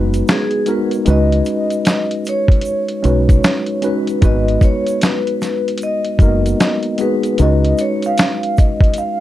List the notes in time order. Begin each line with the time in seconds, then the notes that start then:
Already playing: F#1 G#3 B3 D#4 F#4 B4
0.14 closed hi-hat, shaker
0.28 G#4, snare, closed hi-hat, shaker
0.51 closed hi-hat
0.66 G#3 B3 D#4 F#4 A#4, closed hi-hat, shaker
0.71 B4
0.91 closed hi-hat, shaker
1.05 C#2 G#3 C#4 D#4 F#4 B4, closed hi-hat, shaker
1.10 D#5
1.32 closed hi-hat
1.45 closed hi-hat, shaker
1.70 closed hi-hat, shaker
1.85 snare, closed hi-hat, shaker
2.11 closed hi-hat
2.25 C#5, closed hi-hat, shaker
2.48 kick, closed hi-hat
2.61 closed hi-hat, shaker
2.88 closed hi-hat
3.03 B1 G#3 C#4 D#4 F#4 B4, closed hi-hat, shaker
3.29 kick, closed hi-hat, shaker
3.44 snare, closed hi-hat, shaker
3.66 closed hi-hat
3.82 G#3 C#4 D#4 F#4 B4, closed hi-hat, shaker
3.86 B4
4.07 closed hi-hat, shaker
4.22 G#1 G#3 B3 D#4 F#4 B4 D#5, kick, closed hi-hat, shaker
4.48 closed hi-hat
4.61 C#5, kick, closed hi-hat, shaker
4.87 closed hi-hat, shaker
5.01 B4, snare, closed hi-hat, shaker
5.27 closed hi-hat
5.42 snare, closed hi-hat, shaker
5.68 closed hi-hat
5.78 closed hi-hat, shaker
5.83 D#5
6.05 closed hi-hat
6.19 F#1 G#3 A#3 D#4 F#4 A#4, kick, closed hi-hat, shaker
6.27 B3
6.46 closed hi-hat, shaker
6.60 snare, closed hi-hat, shaker
6.83 closed hi-hat
6.98 G#3 B3 D#4 F#4 G#4 B4, closed hi-hat, shaker
7.23 closed hi-hat, shaker
7.38 C#2 G#3 C#4 D#4 F#4 B4 D#5, closed hi-hat, shaker
7.65 closed hi-hat
7.78 C#5, closed hi-hat, shaker
8.02 F5, closed hi-hat, shaker
8.18 snare, closed hi-hat, shaker
8.43 closed hi-hat
8.57 D#5, kick, closed hi-hat, shaker
8.81 kick, closed hi-hat
8.94 closed hi-hat, shaker
8.98 F5